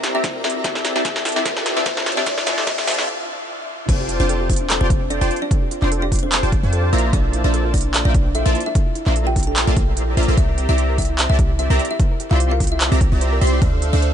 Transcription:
Already playing: C4 G4 A#4 D5 E5 A#5, riser
0.03 G4, snare, closed hi-hat
0.15 C4 E4 G4 D5 E5 A#5
0.24 C5, kick, snare, closed hi-hat
0.35 A#4
0.44 E4 G4 E5, snare, closed hi-hat
0.50 closed hi-hat
0.55 E4
0.64 D3 C4 E4 F4 G4 C5 D5 E5 A5, kick, snare, closed hi-hat
0.75 A4, snare
0.85 G4, snare, closed hi-hat
0.96 C4 E4 G4 D5 E5 A5, snare
1.05 C4 E4 G4 C5 E5 A5, kick, snare, closed hi-hat
1.16 A4, snare
1.25 G4, snare, closed hi-hat, open hi-hat
1.32 closed hi-hat
1.36 C4 E4 G4 D5 E5 A5, snare
1.45 C4 G4 C5 D5 E5 A5, kick, snare, closed hi-hat
1.56 A4, snare
1.66 G4, snare, closed hi-hat
1.76 C4 E4 G4 D5 E5 A5, snare
1.86 C4 E4 G4 C5 D5 E5 A5, kick, snare, closed hi-hat
1.97 A4, snare
2.06 G4, snare, closed hi-hat
2.12 closed hi-hat
2.17 C4 E4 G4 D5 E5 A5, snare
2.26 G4 C5 D5 E5, kick, snare, closed hi-hat
2.38 A4, snare
2.47 C4 E4 G4 C5 D5 E5 A5, snare, closed hi-hat
2.58 A4, snare
2.67 G4 C5 D5 E5 A5, kick, snare, closed hi-hat
2.78 A4, snare
2.87 C4 E4 G4 C5 D5 E5 A5, snare, closed hi-hat, open hi-hat
2.94 closed hi-hat
2.98 A4, snare
3.89 F1 C4 F4 A4 C5 D5 G5 A5, kick, closed hi-hat, crash
4.00 G4
4.09 F4, closed hi-hat
4.20 F1 C4 D4 F4 C5 D5 G5 A5
4.29 A4, closed hi-hat
4.40 G4
4.50 C4 F4 C5, kick, closed hi-hat, open hi-hat
4.56 closed hi-hat
4.61 D4
4.70 A4, clap, closed hi-hat
4.81 F1 C4 F4 G4 C5 D5 G5 A5
4.90 F4, kick, closed hi-hat
5.01 D4
5.10 D4 A4 D5, closed hi-hat
5.21 F1 F4 G4 C5 D5 G5 A5
5.31 F4, closed hi-hat
5.36 closed hi-hat
5.42 D4 D5
5.51 A4, kick, closed hi-hat
5.62 G4
5.71 F4, closed hi-hat
5.82 F1 D4 F4 C5 D5 G5 C6, clap
5.92 A4, closed hi-hat
6.02 D4 G4 D5
6.12 F4, kick, closed hi-hat, open hi-hat
6.19 closed hi-hat
6.23 C4 D4 C5
6.32 A4, clap, closed hi-hat
6.43 F1 F4 G4 C5 D5 G5 A5
6.52 F4, kick, closed hi-hat
6.63 F2 D4 F4 C5 D5 G5 A5
6.73 A4, closed hi-hat
6.83 G4
6.93 A#1 A#3 E4 F4 C5 D5 E5 A#5, closed hi-hat
6.98 closed hi-hat
7.04 D4
7.13 A#1 A#3 D4 F4 A4 C5 D5 E5 A5, kick, closed hi-hat
7.24 F4
7.33 E4, closed hi-hat
7.44 A#1 A#3 D4 F4 C5 D5 E5 A5
7.54 A4, closed hi-hat
7.64 F4
7.74 D4 E4 D5, kick, closed hi-hat, open hi-hat
7.81 closed hi-hat
7.85 D4
7.94 A4, clap, closed hi-hat
8.05 A#1 A#3 D4 F4 C5 D5 E5 G5
8.14 E4, kick, closed hi-hat
8.26 D4
8.35 E4 A4 E5, closed hi-hat
8.46 A#1 A#3 F4 C5 D5 E5 A5
8.55 E4, closed hi-hat
8.60 closed hi-hat
8.66 D4 E4 E5
8.75 A4, kick, closed hi-hat
8.86 F4
8.95 E4, closed hi-hat
9.06 A#1 A#3 D4 E4 F4 C5 D5 E5 A#5, clap
9.16 A4, closed hi-hat
9.27 F4 G4 G5
9.36 E4, kick, closed hi-hat, open hi-hat
9.43 closed hi-hat
9.47 D4 A4 A5
9.56 A4, clap, closed hi-hat
9.67 A#1 A#3 F4 C5 D5 E5 A5
9.76 A#1 A#3 F4 C5 D5, kick, closed hi-hat
9.88 E4
9.97 E4, closed hi-hat
10.08 E4
10.17 A#1 A#3 D4 F4 C5 D5 E5 A#5, closed hi-hat
10.23 closed hi-hat
10.28 A#1 A#3 F4 A4 C5 D5 E5 A#5
10.37 C2 C4 E4 G4 C5 D5 E5 A#5, kick, closed hi-hat
10.49 A#4
10.58 G4, closed hi-hat
10.69 C2 C4 E4 G4 D5 E5 A#5
10.78 C5, closed hi-hat
10.89 A#4
10.98 E4 G4 E5, kick, closed hi-hat, open hi-hat
11.05 closed hi-hat
11.09 E4
11.19 C5, clap, closed hi-hat
11.30 C2 C4 E4 G4 A#4 D5 E5 A5
11.39 G4, kick, closed hi-hat
11.50 E4
11.59 E4 C5 E5, closed hi-hat
11.70 C2 C4 G4 A#4 D5 E5 A#5
11.79 G4, closed hi-hat
11.85 closed hi-hat
11.91 E4 E5
12.00 C5, kick, closed hi-hat
12.11 A#4
12.20 G4, closed hi-hat
12.31 C2 C4 E4 F4 G4 D5 E5 F5 C6, clap
12.40 C5, closed hi-hat
12.51 F4 A#4 F5
12.60 G4, kick, closed hi-hat, open hi-hat
12.67 closed hi-hat
12.71 E4 E5
12.81 C5, clap, closed hi-hat
12.92 C2 C4 G4 A#4 D5 E5 A#5
13.01 G4, kick, closed hi-hat
13.12 C2 C4 E4 G4 D5 E5 A#5
13.21 C5, closed hi-hat
13.32 A#4
13.41 C2 C4 G4 D5 E5 C6, closed hi-hat
13.47 closed hi-hat
13.53 E4
13.62 D2 D4 A4 C5 D5, kick, closed hi-hat
13.73 A4
13.82 F4, closed hi-hat
13.93 D2 D4 A4 C5 D5 E5 F5
14.02 C5, closed hi-hat

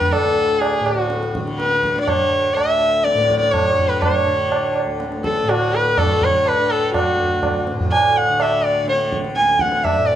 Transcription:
Already playing: D2 A2 D3
0.01 tabla ge
0.05 B4
0.12 A4, tabla na
0.23 D2
0.61 G#4, tabla na
0.80 A2
0.86 F#4, tabla na
1.10 tabla te
1.23 tabla te
1.35 tabla ke
1.39 D3
1.47 tabla te
1.59 B4, tabla te
1.71 tabla te
1.83 tabla ke
1.96 D3, tabla te
2.01 D5
2.08 C#5, tabla na, tabla ge
2.54 D2 E5, tabla na
3.04 D5, tabla te
3.14 A2
3.18 tabla te
3.30 tabla ke
3.40 D5, tabla te
3.52 C#5, tabla na, tabla ge
3.71 D3
3.78 tabla ge
3.89 B4
4.01 C#5, tabla na, tabla ge
4.27 D3
4.52 tabla na
4.76 tabla na
4.86 D2
5.00 tabla te
5.12 tabla te
5.24 A4, tabla ke
5.36 tabla te
5.43 A2
5.49 F#4, tabla na
5.75 B4
5.98 D3 A4, tabla na, tabla ge
6.22 C#5, tabla ge
6.46 B4, tabla na
6.56 D3
6.71 A4
6.94 F#4, tabla na, tabla ge
7.15 D2, tabla ge
7.43 tabla na, tabla ge
7.67 tabla te
7.72 A2
7.80 tabla ge
7.92 G#5, tabla na
8.17 F#5
8.29 D3
8.40 E5, tabla na
8.65 D5
8.84 D3, tabla te
8.89 C#5
9.01 tabla te
9.13 tabla ke
9.24 tabla te
9.36 G#5, tabla te
9.40 D2
9.48 tabla te
9.59 F#5, tabla ke
9.72 tabla te
9.84 E5, tabla na, tabla ge
9.97 A2
10.07 D5

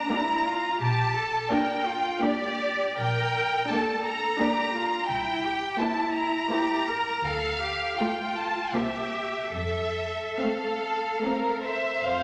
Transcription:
Already playing: A#5
0.10 A#3 D4 E4 G4 D5
0.46 F4
0.80 A#1 G4 A5
1.14 A4
1.49 A#3 D4 G4 A#4 D5 G5
1.85 F4
2.21 A#3 D4 G4 D5
2.98 A#1 A#4 G5
3.69 A#3 D4 G4 A4 D5 A5
4.04 A#5
4.39 A#3 D4 G4 D5
4.73 F4
5.07 C2 E4 G5
5.43 G4
5.77 A#3 E4 G4 C5 A5
6.14 A#5
6.49 A#3 E4 G4 C5
6.86 A#4
7.24 D2 A4 F5
7.61 G4
7.97 A3 F4 A4 G5
8.37 A5
8.72 C2 A#3 C4 G4 C5 E5
9.52 F2 A4 E5
10.38 A3 C4 A4 F5
11.22 A3 C4 A#4
11.62 C5 E5
12.01 F1 F2 C5 F5

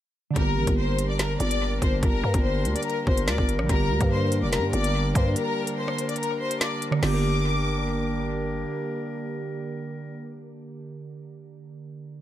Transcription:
0.31 D3 G3
0.36 G1 G3 A#3 D4 G4 A#4 A#5, kick, closed hi-hat
0.42 A#4
0.57 A1
0.67 G1, kick, closed hi-hat
0.78 C5 C6
0.99 closed hi-hat
1.09 D5 D6
1.19 A#4 A#5, snare, closed hi-hat
1.40 G1 D5 D6, closed hi-hat
1.51 closed hi-hat
1.82 G1 C5 C6, kick, closed hi-hat
2.03 G1 A#4 A#5, kick, closed hi-hat
2.24 G2
2.34 G1, kick, closed hi-hat
2.44 C5 C6
2.65 D2, closed hi-hat
2.76 D5 D6, closed hi-hat
2.83 A#4, closed hi-hat
2.87 A#5, closed hi-hat
3.07 G1 C5 C6, kick
3.17 closed hi-hat
3.28 D2 D5 D6, snare
3.38 G1, kick
3.49 closed hi-hat
3.59 A#1, cross-stick
3.64 D3 G3
3.69 G1 G3 A#3 D4 G4 A#4 A#5, kick, closed hi-hat
3.75 A#4
3.90 D2
4.01 G2, kick, closed hi-hat
4.11 C5 C6
4.32 closed hi-hat
4.42 F1 D5 D6
4.53 A#4 A#5, snare, closed hi-hat
4.58 G2
4.73 G1 D5 D6, closed hi-hat
4.84 closed hi-hat
5.15 G2 C5 C6, kick, closed hi-hat
5.36 A#4 A#5, closed hi-hat
5.67 closed hi-hat
5.78 C5 C6
5.88 cross-stick
5.98 closed hi-hat
6.09 D5 D6, closed hi-hat
6.16 A#4, closed hi-hat
6.20 A#5, closed hi-hat
6.40 C5 C6
6.51 closed hi-hat
6.61 D5 D6, snare
6.82 closed hi-hat
6.91 D3, cross-stick
6.99 G1 G3 A#3 D4 A#4 D6, snare, crash
7.07 G4
7.14 A#4

